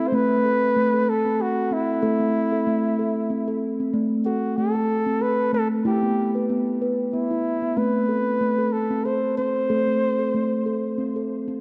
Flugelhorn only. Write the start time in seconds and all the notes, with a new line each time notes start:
0.08 C5
0.15 B4
1.10 A4
1.42 F#4
1.73 E4
4.26 F#4
4.57 A4
5.22 B4
5.54 A4
5.87 G4
7.14 E4
7.77 B4
8.72 A4
9.05 C5
9.37 C5